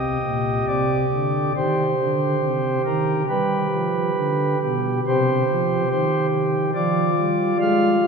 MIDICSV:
0, 0, Header, 1, 2, 480
1, 0, Start_track
1, 0, Key_signature, -3, "minor"
1, 0, Tempo, 878477
1, 1798, Time_signature, 4, 2, 24, 8
1, 2771, Tempo, 846262
1, 4474, End_track
2, 0, Start_track
2, 0, Title_t, "Pipe organ"
2, 0, Program_c, 0, 19
2, 0, Note_on_c, 0, 48, 59
2, 0, Note_on_c, 0, 67, 36
2, 0, Note_on_c, 0, 75, 78
2, 98, Note_off_c, 0, 48, 0
2, 132, Note_on_c, 0, 46, 64
2, 335, Note_off_c, 0, 46, 0
2, 358, Note_off_c, 0, 75, 0
2, 369, Note_on_c, 0, 48, 66
2, 370, Note_on_c, 0, 74, 101
2, 573, Note_off_c, 0, 48, 0
2, 612, Note_on_c, 0, 50, 50
2, 815, Note_off_c, 0, 50, 0
2, 830, Note_off_c, 0, 67, 0
2, 835, Note_off_c, 0, 74, 0
2, 852, Note_on_c, 0, 51, 68
2, 852, Note_on_c, 0, 72, 88
2, 853, Note_on_c, 0, 67, 41
2, 1054, Note_off_c, 0, 51, 0
2, 1090, Note_on_c, 0, 50, 65
2, 1290, Note_off_c, 0, 50, 0
2, 1323, Note_on_c, 0, 48, 58
2, 1524, Note_off_c, 0, 48, 0
2, 1540, Note_off_c, 0, 72, 0
2, 1560, Note_on_c, 0, 51, 61
2, 1560, Note_on_c, 0, 70, 94
2, 1762, Note_off_c, 0, 51, 0
2, 1762, Note_off_c, 0, 70, 0
2, 1777, Note_off_c, 0, 67, 0
2, 1798, Note_on_c, 0, 55, 62
2, 1798, Note_on_c, 0, 67, 33
2, 1798, Note_on_c, 0, 71, 91
2, 2002, Note_off_c, 0, 55, 0
2, 2038, Note_on_c, 0, 53, 60
2, 2242, Note_off_c, 0, 53, 0
2, 2277, Note_on_c, 0, 50, 72
2, 2487, Note_off_c, 0, 50, 0
2, 2502, Note_off_c, 0, 71, 0
2, 2512, Note_off_c, 0, 67, 0
2, 2523, Note_on_c, 0, 47, 62
2, 2523, Note_on_c, 0, 67, 75
2, 2732, Note_off_c, 0, 67, 0
2, 2733, Note_off_c, 0, 47, 0
2, 2770, Note_on_c, 0, 67, 43
2, 2770, Note_on_c, 0, 72, 112
2, 2771, Note_on_c, 0, 48, 73
2, 2976, Note_off_c, 0, 48, 0
2, 3013, Note_on_c, 0, 53, 71
2, 3212, Note_off_c, 0, 53, 0
2, 3232, Note_off_c, 0, 72, 0
2, 3247, Note_on_c, 0, 72, 93
2, 3249, Note_on_c, 0, 51, 66
2, 3448, Note_off_c, 0, 72, 0
2, 3698, Note_off_c, 0, 67, 0
2, 3708, Note_off_c, 0, 51, 0
2, 3722, Note_on_c, 0, 74, 107
2, 3723, Note_on_c, 0, 53, 69
2, 3723, Note_on_c, 0, 65, 47
2, 3926, Note_off_c, 0, 53, 0
2, 3965, Note_on_c, 0, 55, 73
2, 4170, Note_off_c, 0, 55, 0
2, 4191, Note_off_c, 0, 74, 0
2, 4208, Note_on_c, 0, 56, 85
2, 4209, Note_on_c, 0, 77, 124
2, 4415, Note_off_c, 0, 56, 0
2, 4454, Note_on_c, 0, 53, 74
2, 4474, Note_off_c, 0, 53, 0
2, 4474, Note_off_c, 0, 65, 0
2, 4474, Note_off_c, 0, 77, 0
2, 4474, End_track
0, 0, End_of_file